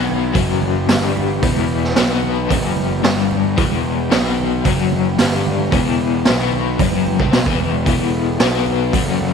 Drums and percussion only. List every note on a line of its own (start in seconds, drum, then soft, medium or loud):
0.09 low conga medium
0.35 kick loud
0.35 open hi-hat medium
0.35 low conga medium
0.62 high conga medium
0.62 low conga medium
0.89 snare loud
0.89 open hi-hat medium
1.17 high conga medium
1.17 low conga medium
1.43 kick loud
1.43 open hi-hat medium
1.57 high conga medium
1.84 snare soft
1.96 snare loud
1.96 open hi-hat medium
2.23 low conga medium
2.51 kick loud
2.51 open hi-hat medium
2.51 low conga medium
2.77 high conga medium
2.77 low conga medium
3.04 snare loud
3.04 open hi-hat soft
3.31 high conga medium
3.31 low conga medium
3.45 high conga medium
3.58 kick loud
3.58 open hi-hat medium
3.71 high conga medium
4.12 snare loud
4.12 open hi-hat soft
4.38 low conga medium
4.65 kick medium
4.65 open hi-hat medium
4.65 low conga medium
4.92 high conga medium
4.92 low conga medium
5.19 snare loud
5.19 open hi-hat medium
5.47 high conga medium
5.47 low conga medium
5.60 high conga medium
5.72 kick loud
5.72 open hi-hat medium
6.25 snare loud
6.25 open hi-hat medium
6.52 low conga medium
6.79 kick loud
6.79 open hi-hat medium
6.79 low conga medium
6.92 high conga medium
7.06 high conga medium
7.06 low conga medium
7.20 kick medium
7.33 snare loud
7.33 open hi-hat medium
7.46 kick medium
7.61 high conga medium
7.61 low conga medium
7.73 high conga medium
7.86 kick loud
7.86 open hi-hat medium
8.00 high conga medium
8.40 snare loud
8.40 open hi-hat medium
8.66 low conga medium
8.93 kick medium
8.93 open hi-hat medium
8.93 low conga medium
9.19 high conga medium
9.19 low conga medium